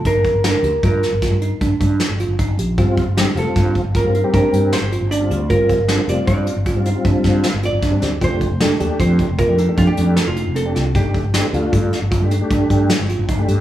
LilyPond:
<<
  \new Staff \with { instrumentName = "Hollow-body jazz guitar" } { \time 7/4 \key g \minor \tempo 4 = 154 bes'4 bes'4 bes'2. r2 | r4. a'4. bes'4 bes'4 c''4 d''4 | bes'4. d''8 d''4. r2 d''4. | c''4 a'4 c''4 bes'8 a'8 f'16 g'8. a'16 f'8. a'4 |
g'1. r4 | }
  \new Staff \with { instrumentName = "Tine electric piano" } { \time 7/4 \key g \minor ees'4 d'8 g'8 f'4 f'8 ees'8 d'8 d'4 f'8 ees'8 g'8 | f'4 d'8 g'8 f'4 f'8 ees'8 d'8 d'4 f'8 d'8 g'8 | f'4 d'8 g'8 f'4 f'8 ees'8 d'8 d'4 f'8 d'8 g'8 | f'4 d'8 g'8 f'4 f'8 ees'8 d'8 d'4 ees'8 c'8 f'8 |
ees'4 d'8 g'8 f'4 f'8 ees'8 d'8 d'4 f'8 ees'8 g'8 | }
  \new Staff \with { instrumentName = "Tonewheel organ" } { \time 7/4 \key g \minor r1. r4 | <g c' f'>8. r16 <g c' g'>16 r16 <g c' f'>4~ <g c' f'>16 r8 <g c' f'>16 r16 <g c' g'>4~ <g c' g'>16 r4 r16 <g c' f'>8 r16 | <g c' f'>8. r16 <g c' f'>16 r16 <g c' f'>4~ <g c' f'>16 r8 <g c' f'>16 r16 <g c' f'>4~ <g c' f'>16 r4 r16 <g c' d'>8 r16 | <a d' g'>8. r16 <a d' g'>16 r16 <a d' g'>4~ <a d' g'>16 r8 <a d' g'>16 r16 <a d' g'>4~ <a d' g'>16 r4 r16 <a d' g'>8 r16 |
<a d' g'>8. r16 <a d' g'>16 r16 <a d' f'>4~ <a d' f'>16 r8 <a d' g'>16 r16 <a d' g'>4~ <a d' g'>16 r4 r16 <a d' g'>8 r16 | }
  \new Staff \with { instrumentName = "Fretless electric bass" } { \clef bass \time 7/4 \key g \minor g,,8 r16 g,,8 r16 d,16 r16 g,8 r16 g,,8 g,8 r16 g,16 r16 g,8 r16 g,,8 g,,8. bes,,8 | g,,8 r16 g,,8 r16 f,,16 r16 g,8 r16 g,,8 g,8 r16 g,16 r16 g,8 r16 g,,8 g,,8. d,8 | g,,8 r16 g,,8 r16 f,,16 r16 g,8 r16 g,,8 g,8 r16 g,16 r16 g,8 r16 g,,8 g,,8. d,8 | f,,8 r16 f,,8 r16 ees,16 r16 f,8 r16 f,,8 f,8 r16 f,16 r16 f,8 r16 f,,8 f,,8. c,8 |
g,,8 r16 g,,8 r16 d,16 r16 g,8 r16 g,,8 g,8 r16 g,16 r16 g,8 r16 g,,8 g,,8. g,8 | }
  \new DrumStaff \with { instrumentName = "Drums" } \drummode { \time 7/4 <hh bd>8 <hh bd>8 <hh sn>8 hh8 <hh bd>8 <hh sn>8 <hh bd sn>8 hh8 <hh bd>8 <hh bd>8 <hh sn>8 hh8 <hh bd>8 hh8 | <hh bd>8 <hh bd>8 <hh sn>8 hh8 <hh bd sn>8 <hh bd>8 <hh bd>8 hh8 <hh bd>8 hh8 <hh sn>8 hh8 hh8 hh8 | <hh bd>8 <hh bd>8 <hh sn>8 hh8 <hh bd>8 hh8 <hh bd>8 hh8 <hh bd>8 <hh bd sn>8 <hh sn>8 hh8 <hh bd sn>8 <hh sn>8 | <hh bd>8 <hh bd>8 <hh sn>8 hh8 <hh bd>8 <hh bd>8 <hh bd>8 hh8 <hh bd>8 hh8 <hh sn>8 hh8 hh8 <hh sn>8 |
<hh bd>8 <hh bd>8 <hh sn>8 hh8 <hh bd>8 <hh sn>8 <hh bd>8 hh8 <hh bd>8 <hh bd>8 <hh sn>8 hh8 <hh bd>8 hh8 | }
>>